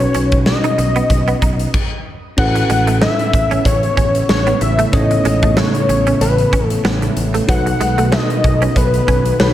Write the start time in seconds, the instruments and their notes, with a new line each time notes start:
Already playing: tine electric piano B2 C#4 D#4 F#4 B4, analog synth lead C#5
0.00 muted clean electric guitar stroke, closed hi-hat
0.14 fretless electric bass B1, clean electric guitar C#4, closed hi-hat
0.32 kick, closed hi-hat
0.46 analog synth lead D#5, snare
0.64 clean electric guitar D#4, closed hi-hat
0.78 fretless electric bass B1, muted clean electric guitar stroke, closed hi-hat
0.96 clean electric guitar B3, closed hi-hat
1.10 fretless electric bass B1, muted clean electric guitar stroke, kick, closed hi-hat
1.28 clean electric guitar B3, closed hi-hat
1.42 fretless electric bass B1, clean electric guitar D#4, kick, closed hi-hat
1.59 closed hi-hat
1.74 kick, crash
2.37 fretless electric bass A1, tine electric piano A2 C#4 E4 A4 B4, analog synth pad C#3 A3 B3, analog synth lead F#5, kick, crash, cowbell
2.55 muted clean electric guitar stroke, closed hi-hat
2.70 fretless electric bass A1, clean electric guitar G#3, closed hi-hat
2.87 clean electric guitar A3, closed hi-hat
3.01 clean electric guitar A3, analog synth lead E5, snare, cowbell
3.19 closed hi-hat
3.33 fretless electric bass A1, muted clean electric guitar stroke, kick, closed hi-hat
3.51 clean electric guitar C#4, closed hi-hat
3.65 fretless electric bass A1, analog synth lead C#5, kick, closed hi-hat, cowbell
3.83 closed hi-hat
3.97 fretless electric bass A1, clean electric guitar C#4, kick, closed hi-hat
4.15 closed hi-hat
4.29 fretless electric bass A1, analog synth lead C#5, snare, cowbell
4.47 clean electric guitar B3, closed hi-hat
4.61 fretless electric bass A1, analog synth lead E5, muted clean electric guitar stroke, closed hi-hat
4.79 clean electric guitar A3, closed hi-hat
4.92 fretless electric bass A1, tine electric piano A2 C#4 E4 A4 C#5, analog synth lead D#5, kick, closed hi-hat, cowbell
5.11 muted clean electric guitar stroke, closed hi-hat
5.25 fretless electric bass A1, clean electric guitar G#3, closed hi-hat
5.43 clean electric guitar A3, kick, closed hi-hat
5.57 clean electric guitar A3, analog synth lead C#5, snare, cowbell
5.75 closed hi-hat
5.89 fretless electric bass A1, muted clean electric guitar stroke, closed hi-hat
6.07 clean electric guitar C#4, closed hi-hat
6.21 fretless electric bass A1, analog synth lead B4, closed hi-hat, cowbell
6.38 closed hi-hat
6.53 fretless electric bass A1, clean electric guitar C#4, kick, closed hi-hat
6.66 analog synth lead A4
6.70 closed hi-hat
6.85 fretless electric bass A1, clean electric guitar B3, snare, cowbell
7.02 muted clean electric guitar stroke, closed hi-hat
7.17 fretless electric bass A1, closed hi-hat
7.34 clean electric guitar A3, closed hi-hat
7.47 fretless electric bass B1, tine electric piano B2 D#4 F#4 A4 B4, analog synth pad D#3 B3, analog synth lead F#5, kick, closed hi-hat, cowbell
7.66 muted clean electric guitar stroke, closed hi-hat
7.80 fretless electric bass B1, clean electric guitar G#3, closed hi-hat
7.98 clean electric guitar A3, closed hi-hat
8.12 clean electric guitar A3, analog synth lead D#5, snare, cowbell
8.30 closed hi-hat
8.44 fretless electric bass B1, muted clean electric guitar stroke, kick, closed hi-hat
8.62 clean electric guitar C#4, closed hi-hat
8.76 fretless electric bass B1, analog synth lead B4, kick, closed hi-hat, cowbell
8.94 closed hi-hat
9.08 fretless electric bass B1, clean electric guitar C#4, kick, closed hi-hat
9.25 closed hi-hat
9.39 fretless electric bass B1, tine electric piano D#4 F#4 A4 C#5, analog synth lead B4, snare, cowbell